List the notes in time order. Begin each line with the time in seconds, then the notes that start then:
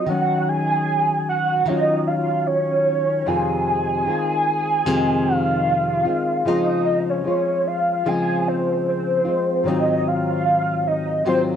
0.06 D#3 F#3 C#4 F#5
0.49 G#5
1.29 F#5
1.65 D#3 F#3 C#4 D#5
1.71 F4
2.07 F5
2.47 C#5
3.26 F2 C3 D#3 G#3 C4 F4 G#5
4.06 D#3 G#3 C4 F4
4.85 F2 C3 D#3 G#3 C4 F4
5.27 F5
6.05 D#3 G#3 C4 F4
6.45 C#3 F3 G#3 C4 F4 D#5
7.10 C#5
7.24 F3 G#3 F4
7.67 F5
8.05 C#3 F3 G#3 C4 F4 G#5
8.48 C5
8.88 C5
9.25 G#3 C4 F4
9.63 G#2 D#3 F#3
9.67 C4 F4 D#5
10.08 F5
10.87 D#5
11.25 G#2 D#3 F#3 C4 F4 C5